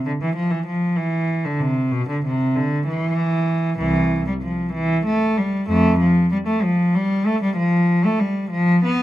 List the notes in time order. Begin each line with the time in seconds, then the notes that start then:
0.06 D3
0.22 E3
0.35 F3
0.50 E3
0.67 F3
0.96 E3
1.45 D3
1.60 C3
1.92 B2
2.09 D3
2.25 C3
2.55 D3
2.87 E3
3.78 C2 E3
4.27 G3
4.43 F3
4.73 E3
5.06 A3
5.37 G3
5.69 F2 A3
6.00 F3
6.32 G3
6.47 A3
6.63 F3
6.95 G3
7.26 A3
7.43 G3
7.57 F3
8.05 A3
8.20 G3
8.51 F3
8.85 B3